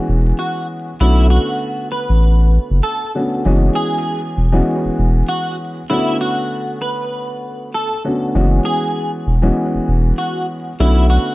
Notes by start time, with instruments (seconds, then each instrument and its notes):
Already playing: upright piano E3 G#3 B3 C#4 F#4
0.08 sub bass E1
0.39 clean electric guitar F#4
1.00 sub bass B1, upright piano D3 A3 B3 C#4 F#4, clean electric guitar E4
1.30 clean electric guitar F#4
1.92 clean electric guitar B4
2.09 sub bass A1
2.70 sub bass F#1
2.83 clean electric guitar A4
3.15 upright piano D3 A3 B3 C#4 F#4
3.45 sub bass F#1, upright piano E3 G#3 B3 C#4 F#4
3.75 clean electric guitar G#4
4.37 sub bass E1
4.52 upright piano E3 G#3 B3 C#4 F#4
4.85 sub bass E1
4.98 sub bass E1
5.28 clean electric guitar F#4
5.90 upright piano D3 A3 B3 C#4 F#4, clean electric guitar E4
6.21 clean electric guitar F#4
6.82 clean electric guitar B4
7.74 clean electric guitar A4
8.04 upright piano D3 A3 B3 C#4 F#4
8.35 sub bass F#1, upright piano E3 G#3 B3 C#4 F#4
8.65 clean electric guitar G#4
9.27 sub bass E1
9.42 upright piano E3 G#3 B3 C#4 F#4
9.75 sub bass E1
9.88 sub bass E1
10.18 clean electric guitar F#4
10.80 sub bass B1, upright piano D3 A3 B3 C#4 F#4, clean electric guitar E4
11.10 clean electric guitar F#4